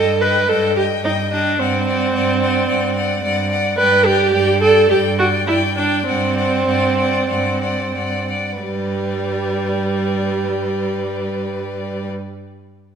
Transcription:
Already playing: cello G2, viola A4, violin D#5 G5
0.22 viola B4, violin D#5 G5
0.49 cello G2, viola A4, violin D#5 G5
0.77 viola G4, violin D#5 G5
1.03 cello G2, viola D#4, violin D#5 G5
1.31 viola D4, violin D#5 G5
1.59 cello G2, viola C4, violin D5 F#5
1.87 violin D5 F#5
2.14 cello G2, violin D5 F#5
2.42 violin D5 F#5
2.68 cello G2, violin D5 F#5
2.95 violin D5 F#5
3.23 cello G2, violin D5 F#5
3.50 violin D5 F#5
3.78 cello G2, viola B4, violin D5 G5
4.06 viola G4, violin D5 G5
4.34 cello G2, violin D5 G5
4.62 viola A4, violin D5 G5
4.90 cello G2, viola G4, violin D5 G5
5.19 viola F#4, violin D5 G5
5.47 cello G2, viola E4, violin D5 G5
5.77 viola D4, violin D5 G5
6.06 cello G2, viola C4, violin D5 F#5
6.37 violin D5 F#5
6.67 cello G2, violin D5 F#5
6.98 violin D5 F#5
7.29 cello G2, violin D5 F#5
7.62 violin D5 F#5
7.94 cello G2, violin D5 F#5
8.28 violin D5 F#5
8.62 cello G2, viola G3, violin B4 D5

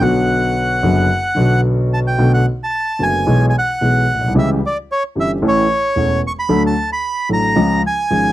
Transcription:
0.00 grand piano B1 B2 D3 F#3 B3 F#4, bandoneon F#5
0.83 grand piano F#1 F#2 D3 F#3 B3 F#4
1.35 grand piano B1 B2 D3 F#3 B3
1.39 grand piano F#4
1.94 bandoneon A5
2.07 bandoneon G5
2.18 grand piano B1 B2 D3 A3 B3 F#4
2.34 bandoneon F#5
2.64 bandoneon A5
2.99 grand piano F#1 F#2 D3 A3 B3 F#4
3.03 bandoneon G#5
3.26 grand piano B1 B2 E3 G#3 B3 G#4
3.50 bandoneon G#5
3.58 bandoneon F#5
3.81 grand piano B1 B2 E3 G#3 B3 G#4
4.14 grand piano A#1
4.21 grand piano B1
4.28 grand piano C2
4.34 grand piano C#2 C#3 E3 G3 C#4 G4
4.38 bandoneon E5
4.66 bandoneon D5
4.92 bandoneon C#5
5.15 grand piano G1 G2 E3 G3 C#4 G4
5.20 bandoneon E5
5.42 grand piano A1 A2 E3 A3 C#4 A4
5.48 bandoneon C#5
5.96 grand piano E1 E2 E3 A3 C#4 A4
6.27 bandoneon C#6
6.39 bandoneon B5
6.49 grand piano D2 D3 F#3 A3 D4 A4
6.67 bandoneon A5
6.93 bandoneon B5
7.29 grand piano A1 A2 F#3 A3 D4 A4
7.33 bandoneon A#5
7.56 grand piano C#2 C#3 F3 G#3 C#4 G#4
7.87 bandoneon G#5
8.11 grand piano G#1 G#2 F3 G#3 C#4 G#4

